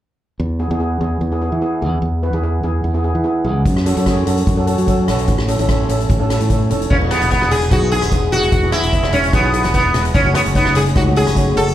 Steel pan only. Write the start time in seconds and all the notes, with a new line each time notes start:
0.59 B3 E4 G#4
0.71 B3 E4 G#4
0.80 B3 E4 G#4
1.01 B3 E4 G#4
1.32 B3 E4 G#4
1.41 B3 E4 G#4
1.62 B3 E4 G#4
1.82 B3 E4 G#4
2.23 B3 E4 B4
2.34 B3 E4 G#4
2.43 B3 E4 G#4
2.64 B3 E4 G#4
2.94 B3 E4 G#4
3.04 B3 E4 G#4
3.24 B3 E4 G#4
3.45 B3 E4 G#4
3.86 C#4 F#4 A4
3.97 C#4 F#4 A4
4.06 C#4 F#4 G#4
4.26 C#4 F#4 A4
4.57 C#4 F#4 A4
4.67 C#4 F#4 A4
4.87 C#4 F#4 A4
5.08 C#4 F#4 A4
5.48 C#4 E4 A4
5.59 C#4 E4 A4
5.69 C#4 E4 A4
5.89 C#4 E4 A4
6.20 C#4 E4 A4
6.30 C#4 E4 A4
6.50 C#4 E4 A4
6.70 C#4 E4 A4
7.01 B3 E4 G#4
7.10 B3 E4 G#4
7.31 B3 E4 G#4
7.71 B3 E4 G#4
7.82 B3 E4 G#4
7.91 B3 E4 G#4
8.13 B3 E4 G#4
8.32 B3 E4 G#4
8.63 B3 E4 G#4
8.73 B3 E4 G#4
8.94 B3 E4 G#4
9.33 B3 E4 G#4
9.44 B3 E4 G#4
9.53 B3 E4 G#4
9.74 B3 E4 B4
9.94 B3 E4 G#4
10.25 A3 C#4 F#4
10.34 A3 C#4 G#4
10.54 A3 C#4 D#4
10.95 A3 C#4 D#4
11.06 A3 C#4 F#4
11.16 A3 C#4 F#4
11.36 A3 C#4 F#4
11.56 A3 C#4 F#4